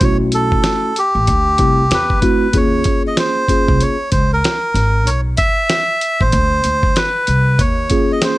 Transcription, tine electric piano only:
0.00 A3 C#4 E4 F#4
1.58 A3 C4 E4 G4
2.22 A3 C4 E4 F#4
2.53 A#3 C#4 F4 G#4
3.48 A#3 C#4 F4 G#4
7.90 A#3 C#4 F4 G#4

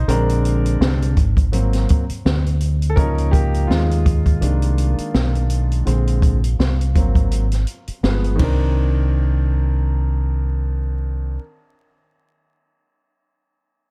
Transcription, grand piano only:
Already playing: C5
0.08 D3 G#3 C4 D4 A#4
1.52 F#3 A#3 C4
2.90 A4
2.96 F3 A#3 C#4 D#4 A#4
3.31 A#3 G4
3.67 G#3 F4
4.41 D#3 A#3 D4
5.85 D3 G#3 C4
6.95 F#3 A#3 C4
8.03 F3 G#3 B3
8.35 D#3 C4
8.41 D4 A#4

